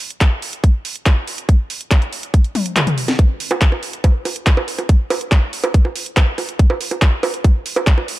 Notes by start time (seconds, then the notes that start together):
0.10 closed hi-hat
0.21 kick, clap, closed hi-hat
0.42 open hi-hat
0.53 closed hi-hat
0.64 kick, closed hi-hat
0.85 open hi-hat
0.96 closed hi-hat
1.06 kick, clap, closed hi-hat
1.27 open hi-hat
1.38 closed hi-hat
1.49 kick, closed hi-hat
1.70 open hi-hat
1.81 closed hi-hat
1.91 kick, clap, closed hi-hat
2.02 closed hi-hat
2.13 open hi-hat
2.23 closed hi-hat
2.34 kick, closed hi-hat
2.44 closed hi-hat
2.55 open hi-hat, high tom
2.66 closed hi-hat
2.76 clap, closed hi-hat, mid tom
2.87 closed hi-hat, mid tom
2.98 open hi-hat
3.08 snare, closed hi-hat
3.19 kick, closed hi-hat, high bongo
3.40 open hi-hat
3.51 closed hi-hat, high bongo
3.61 kick, clap, closed hi-hat
3.72 high bongo
3.83 open hi-hat
3.93 closed hi-hat
4.04 kick, closed hi-hat, high bongo
4.25 open hi-hat, high bongo
4.36 closed hi-hat
4.47 kick, clap, closed hi-hat
4.57 high bongo
4.68 open hi-hat
4.78 closed hi-hat, high bongo
4.89 kick, closed hi-hat
5.10 open hi-hat, high bongo
5.21 closed hi-hat
5.32 kick, clap, closed hi-hat, high bongo
5.53 open hi-hat
5.64 closed hi-hat, high bongo
5.74 kick, closed hi-hat
5.85 high bongo
5.96 open hi-hat
6.06 closed hi-hat
6.17 kick, clap, closed hi-hat, high bongo
6.38 open hi-hat, high bongo
6.49 closed hi-hat
6.59 kick, closed hi-hat
6.70 high bongo
6.81 open hi-hat
6.91 closed hi-hat, high bongo
7.02 kick, clap, closed hi-hat
7.23 open hi-hat, high bongo
7.34 closed hi-hat
7.44 kick, closed hi-hat, high bongo
7.66 open hi-hat
7.76 closed hi-hat, high bongo
7.87 kick, clap, closed hi-hat
7.98 high bongo
8.08 open hi-hat